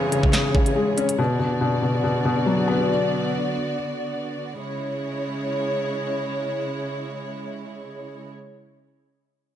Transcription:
Already playing: felt piano C#3 G#3 C#4, string section E3 C#4 G#4 C#5, downlifter
0.12 felt piano C#3, closed hi-hat
0.23 kick
0.33 felt piano C#3, snare, clap, closed hi-hat
0.54 felt piano C#3, kick
0.66 closed hi-hat
0.76 felt piano G#3
0.97 felt piano C#4, closed hi-hat
1.09 closed hi-hat
1.18 felt piano B2, string section D3 B3 F#4 D5
1.39 felt piano B2
1.61 felt piano B2
1.82 felt piano B2
2.04 felt piano B2
2.25 felt piano B2
2.46 felt piano F#3
2.68 felt piano B3
4.59 string section C#3 G#3 E4 C#5

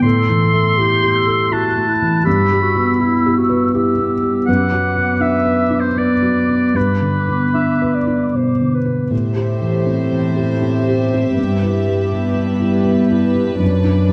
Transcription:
0.02 felt piano A2, clarinet A4, oboe C6, flute section E6
0.29 felt piano E3
0.53 felt piano A3
0.78 felt piano E4, clarinet G4, flute section G6
1.02 felt piano G4
1.15 flute section E6
1.26 felt piano A4
1.51 felt piano E4, clarinet F#4, oboe A5, flute section F#6
1.76 felt piano A3
1.88 clarinet E4
2.02 felt piano E3
2.25 felt piano G2, clarinet G4, oboe B5, flute section E6
2.52 felt piano G3
2.62 clarinet F#4
2.75 felt piano B3
3.00 clarinet E4, felt piano E4
3.26 felt piano G4
3.37 clarinet F#4
3.49 felt piano B4
3.74 felt piano E4, clarinet G4, flute section E6
3.98 felt piano B3
4.23 felt piano G3
4.47 felt piano F#2, clarinet B4, oboe F#5, flute section D6
4.72 felt piano F#3
4.96 felt piano B3
5.20 felt piano D4, oboe E5
5.45 felt piano B4
5.71 felt piano D4
5.80 oboe C5
5.96 felt piano B3, clarinet B4, oboe D5, flute section D6
6.22 felt piano F#3
6.49 felt piano B3
6.74 felt piano G2, clarinet B4, oboe B4, flute section D6
7.02 felt piano D3
7.28 felt piano B3
7.54 felt piano D4, clarinet E5
7.82 felt piano B4
7.95 clarinet D5
8.07 felt piano D4
8.34 felt piano B2, clarinet C5
8.61 felt piano D3
8.74 clarinet B4
8.85 felt piano B3
9.11 felt piano A2, cello section A2, viola section G4, violin section C5 E5
9.36 felt piano G4
9.61 felt piano E3
9.87 felt piano C4
10.12 felt piano E3
10.36 felt piano G4
10.62 felt piano C4
10.88 felt piano G4
11.14 felt piano C4
11.36 cello section G2, felt piano G2, violin section B4
11.63 felt piano E4
11.87 felt piano G3
12.12 felt piano B3
12.35 felt piano G3
12.60 felt piano E4
12.85 felt piano B3
13.10 felt piano E4
13.35 felt piano B3
13.60 felt piano F#2, cello section F#2, viola section D4, violin section D5
13.84 felt piano D4
14.09 felt piano F#3

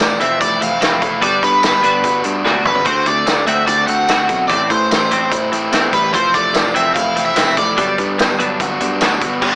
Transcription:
Already playing: overdriven electric guitar A3 D5
0.00 picked electric bass F1, clean electric guitar E3 A3, overdriven electric guitar F3, snare
0.20 picked electric bass F1, clean electric guitar E3 A3 C4, overdriven electric guitar C4 E5, closed hi-hat
0.41 picked electric bass F1, clean electric guitar E3 A3, overdriven electric guitar E4 D5, kick, closed hi-hat
0.61 picked electric bass F1, clean electric guitar E3 A3, overdriven electric guitar C4 F5, closed hi-hat
0.81 picked electric bass F1, clean electric guitar E3 A3 C4, overdriven electric guitar E4, snare, closed hi-hat, tambourine
1.01 picked electric bass F1, clean electric guitar E3 A3, overdriven electric guitar A3, kick, closed hi-hat
1.21 picked electric bass G1, overdriven electric guitar G3 D5, clean electric guitar B3 D4 F#4, kick, closed hi-hat
1.42 picked electric bass G2, clean electric guitar B3 D4, overdriven electric guitar B3 B4, kick, closed hi-hat
1.63 picked electric bass G1, overdriven electric guitar G3 B4, clean electric guitar B3 D4, snare, closed hi-hat, tambourine
1.83 picked electric bass G1, clean electric guitar B3 D4 F#4, overdriven electric guitar D4, closed hi-hat
2.04 picked electric bass G1, clean electric guitar B3 D4, overdriven electric guitar F#4, kick, closed hi-hat
2.24 picked electric bass G2, clean electric guitar B3 D4, overdriven electric guitar D4, closed hi-hat
2.45 picked electric bass D2, clean electric guitar B3 D4 F#4, overdriven electric guitar F#4, snare
2.54 high tom
2.65 picked electric bass G1, clean electric guitar B3 D4, overdriven electric guitar B3 B4, mid tom
2.75 floor tom
2.85 picked electric bass D2, overdriven electric guitar D3 C5, clean electric guitar A3 C4 F#4, kick, closed hi-hat
3.06 picked electric bass D2, clean electric guitar A3 C4, overdriven electric guitar A3 D5, kick, closed hi-hat
3.27 picked electric bass D2, overdriven electric guitar D3, clean electric guitar A3 C4, snare, closed hi-hat, tambourine
3.47 picked electric bass D2, clean electric guitar A3 C4 F#4, overdriven electric guitar C4 E5, closed hi-hat
3.67 picked electric bass D2, clean electric guitar A3 C4, overdriven electric guitar F#4 D5, kick, closed hi-hat
3.87 picked electric bass D2, clean electric guitar A3 C4, overdriven electric guitar C4 F#5, closed hi-hat
4.09 picked electric bass D2, clean electric guitar A3 C4 F#4, overdriven electric guitar F#4, snare, closed hi-hat, tambourine
4.28 picked electric bass B1, overdriven electric guitar A3, clean electric guitar A3 C4, kick, closed hi-hat
4.48 picked electric bass A1, overdriven electric guitar A2 D5, clean electric guitar E3 A3 C4, kick, closed hi-hat
4.70 picked electric bass A2, overdriven electric guitar E3 C5, clean electric guitar E3 A3, kick, closed hi-hat
4.90 picked electric bass A1, overdriven electric guitar E3 C5, clean electric guitar E3 A3, snare, closed hi-hat, tambourine
5.11 picked electric bass A1, clean electric guitar E3 A3 C4, overdriven electric guitar C4, closed hi-hat
5.31 picked electric bass A1, clean electric guitar E3 A3, overdriven electric guitar E4, kick, closed hi-hat
5.52 picked electric bass A2, clean electric guitar E3 A3, overdriven electric guitar C4, closed hi-hat
5.72 picked electric bass E2, clean electric guitar E3 A3 C4, overdriven electric guitar E4, snare, closed hi-hat, tambourine
5.92 picked electric bass A1, clean electric guitar E3 A3, overdriven electric guitar G3 B4, kick, closed hi-hat
6.13 picked electric bass F1, clean electric guitar E3 A3 C4, overdriven electric guitar F3 C5, kick, closed hi-hat
6.33 picked electric bass F1, clean electric guitar E3, overdriven electric guitar A3 D5, kick, closed hi-hat
6.53 picked electric bass F1, clean electric guitar E3 A3, overdriven electric guitar F3, snare, closed hi-hat, tambourine
6.74 picked electric bass F1, clean electric guitar E3 A3 C4, overdriven electric guitar C4 E5, closed hi-hat
6.95 picked electric bass F1, clean electric guitar E3 A3, overdriven electric guitar E4 F5, kick, closed hi-hat
7.16 picked electric bass F1, clean electric guitar E3 A3, overdriven electric guitar C4, closed hi-hat
7.26 overdriven electric guitar E5
7.36 picked electric bass F1, clean electric guitar E3 A3 C4, overdriven electric guitar E4 E5, snare, closed hi-hat, tambourine
7.57 picked electric bass F1, clean electric guitar E3 A3, overdriven electric guitar A3 D5, kick, closed hi-hat
7.77 picked electric bass G1, clean electric guitar F#3 B3 D4, overdriven electric guitar G3, kick, closed hi-hat
7.98 picked electric bass G2, clean electric guitar F#3 B3, overdriven electric guitar B3, kick, closed hi-hat
8.18 picked electric bass G1, clean electric guitar F#3 B3, overdriven electric guitar G3, snare, closed hi-hat, tambourine
8.39 picked electric bass G1, clean electric guitar F#3 B3 D4, overdriven electric guitar D4, closed hi-hat
8.60 picked electric bass G1, clean electric guitar F#3 B3, overdriven electric guitar F#4, kick, closed hi-hat
8.80 picked electric bass G2, clean electric guitar F#3 B3, overdriven electric guitar D4, closed hi-hat
9.01 picked electric bass D2, clean electric guitar F#3 B3 D4, overdriven electric guitar F#4, snare, closed hi-hat, tambourine
9.21 picked electric bass G1, clean electric guitar F#3 B3, overdriven electric guitar B3, kick, closed hi-hat
9.42 picked electric bass G1, overdriven electric guitar G2, clean electric guitar G3 B3 D4, kick, crash

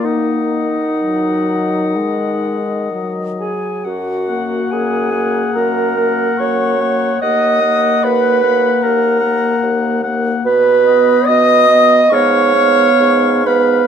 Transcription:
Already playing: french horn A#3
0.04 bassoon D#3, clarinet D#4, oboe D#5, flute F#5
1.01 french horn F#3
1.96 french horn G#3
2.92 french horn F#3
3.40 clarinet G#4, flute G#5
3.84 bassoon F#2, clarinet F#4, flute F#5
4.29 french horn A#3, oboe F#5
4.71 bassoon F#2, clarinet G#4, flute G#5
5.12 french horn A#3, oboe F#5
5.54 bassoon F#2, clarinet A#4, flute A#5
5.97 french horn A#3, oboe F#5
6.37 bassoon F#2, clarinet C#5, flute C#6
6.79 french horn A#3, oboe F#5
7.21 bassoon D#2, french horn A#3, clarinet D#5, oboe F#5, flute D#6
7.61 french horn A#3, oboe F#5
8.03 bassoon D#2, clarinet B4, flute B5
8.43 french horn A#3, oboe F#5
8.82 bassoon D#2, clarinet A#4, flute A#5
9.20 french horn A#3, oboe F#5
9.63 bassoon D#2
10.04 french horn A#3, oboe F#5
10.45 bassoon B2, clarinet B4, flute B5
10.86 french horn B3, oboe D#5
11.26 bassoon B2, clarinet D#5, flute D#6
11.69 french horn B3, oboe D#5
12.10 bassoon G#2, french horn B3, clarinet C#5, oboe F5, flute C#6
12.55 french horn B3, oboe F5
13.00 bassoon G#2
13.45 french horn B3, clarinet B4, oboe F5, flute B5

